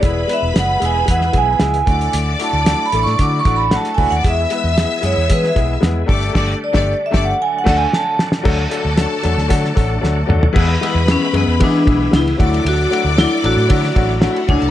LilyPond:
<<
  \new Staff \with { instrumentName = "Vibraphone" } { \time 4/4 \key d \lydian \tempo 4 = 114 d''8 e''8 fis''8 gis''8 fis''8 gis''4. | r8 a''8 \tuplet 3/2 { a''8 b''8 cis'''8 d'''8 cis'''8 b''8 a''8 gis''8 fis''8 } | e''4. cis''8 \tuplet 3/2 { b'8 e''8. r16 } r4 | r8 d''8~ \tuplet 3/2 { d''8 e''8 fis''8 gis''8 fis''8 gis''8 } a''8 r8 |
r1 | r4 cis'8 b8 d'4 e'4 | fis'4 e'8 fis'2 d'8 | }
  \new Staff \with { instrumentName = "String section" } { \time 4/4 \key d \lydian <b' b''>2. r8 <d'' d'''>8~ | <d'' d'''>2. \tuplet 3/2 { <fis' fis''>16 <gis' gis''>16 <a' a''>16 <b' b''>16 <cis'' cis'''>16 <d'' d'''>16 } | <e'' e'''>2. r8 <d'' d'''>8 | <d'' d'''>8 r16 <d'' d'''>8 r16 <d'' d'''>8 r8 <a' a''>8 r4 |
<a' a''>2.~ <a' a''>8 r8 | <b' b''>2. r8 <d'' d'''>8~ | <d'' d'''>2. \tuplet 3/2 { <d' d''>16 <e' e''>16 <fis' fis''>16 <gis' gis''>16 <a' a''>16 r16 } | }
  \new Staff \with { instrumentName = "Grand piano" } { \time 4/4 \key d \lydian <gis b e' gis'>16 r16 <gis b e' b'>16 r16 <gis b e' gis'>16 r16 <gis b e' gis'>16 r16 <gis b e' b'>16 r16 <gis b e' gis'>16 r16 <gis b e' gis'>16 r16 <a d' e' fis'>8~ | <a d' e' fis'>16 r16 <a d' e' fis'>16 r16 <a d' e' fis'>16 r16 <a d' e' a'>16 r16 <a d' e' fis'>16 r16 <a d' e' fis'>16 r16 <a d' e' fis'>16 r16 <a d' e' fis'>16 r16 | <gis b e' gis'>16 r16 <gis b e' b'>16 r16 <gis b e' gis'>16 r16 <gis b e' gis'>16 r16 <gis b e' gis'>16 r16 <gis b e' gis'>16 r16 <gis b e' gis'>16 r16 <a d' g' a'>8 | <a d' g' a'>8 r16 <a d' g' a'>8 r16 <a d' g' a'>8 r8 <a d' fis' a'>8 r4 |
<fis a d' fis' a'>16 r16 <fis a d' fis' a'>16 r16 <fis a d' fis' a'>16 r16 <fis a d' fis' a'>16 r16 <fis a d' fis' a'>16 r16 <fis a d' fis' a'>16 r16 <fis a d' fis' a'>16 r16 <fis a d' fis' a'>16 r16 | <e gis b e' gis'>16 r16 <e gis b e' gis'>16 r16 <e gis b e' gis'>16 r16 <e gis b e' gis'>16 r16 <e gis b e' gis'>16 r16 <e gis b e' gis'>16 r16 <e gis b e' gis'>16 r16 <fis a d' e' fis'>8~ | <fis a d' e' fis'>16 r16 <fis a d' e' fis'>16 r16 <fis a d' e' fis'>16 r16 <fis a d' e' a'>16 r16 <fis a d' e' fis'>16 r16 <fis a d' e' fis'>16 r16 <fis a d' e' fis'>16 r16 <fis a d' e' fis'>16 r16 | }
  \new Staff \with { instrumentName = "Tonewheel organ" } { \time 4/4 \key d \lydian e'1~ | e'1 | e'2.~ e'8 d'8~ | d'1 |
d'1 | e'1~ | e'1 | }
  \new Staff \with { instrumentName = "Tonewheel organ" } { \clef bass \time 4/4 \key d \lydian << { b2.~ b8 d'8~ | d'1 | b2.~ b8 a8~ | a1 |
a1 | b2.~ b8 d'8~ | d'1 | } \\ { <e gis>2.~ <e gis>8 <fis a>8~ | <fis a>1 | <e gis>2.~ <e gis>8 <d g>8~ | <d g>2 <d fis>2 |
<d fis>1 | <e gis>2.~ <e gis>8 <fis a>8~ | <fis a>1 | } >> }
  \new Staff \with { instrumentName = "Fingered electric bass" } { \clef bass \time 4/4 \key d \lydian e,,8 r16 e,,16 fis,,8 e,,8 e,8 b,,8 cis,8 d,8 | d,8 r16 d,8 r16 a,,16 a,16 d8 a,,8. r16 cis,16 dis,16 | e,8 r16 e,8 r16 fis,16 e,16 e8 b,,8 e,8 g,,8 | g,,8 r16 g,,8 r16 g,,8 r8 d,8 r4 |
d,8 r16 d,8 r16 e,16 d,16 d8 a,,8 d,8 dis,8 | e,8 r16 e,8 r16 fis,16 e,16 e8 b,,8 cis,8 d,8 | d,8 r16 d,8 r16 a,,16 a,16 d8 a,,8. r16 cis,16 c,16 | }
  \new DrumStaff \with { instrumentName = "Drums" } \drummode { \time 4/4 <hh bd>8 hh8 <hh sn>8 hh8 <hh bd>16 sn16 <hh bd>8 <hh sn>16 hh16 <hh bd>16 hh16 | hh8 hh8 <hh sn>8 hh16 sn16 <hh bd>8 <hh bd>8 <hh sn>16 hh16 <hho bd>16 hh16 | <hh bd>8 hh8 <hh sn>8 hh8 <hh bd>16 sn16 <hh bd>8 <hh sn>8 <hho bd>16 hh16 | <cymc bd sn>8. <bd sn>16 r8 <bd sn>8 r8 <cymc bd sn>8 sn8 sn16 sn16 |
<cymc bd>8 hh8 <hh sn>8 hh16 sn16 <hh bd>16 sn16 <hh bd>8 sn8 toml16 tomfh16 | <cymc bd>8 cymr8 <cymr sn>8 cymr8 <bd cymr>8 <bd cymr>8 <cymr sn>16 cymr16 <bd cymr>16 cymr16 | cymr8 cymr8 <cymr sn>8 cymr8 <bd cymr>16 sn16 <bd cymr>8 <cymr sn>16 cymr16 <bd cymr>16 cymr16 | }
>>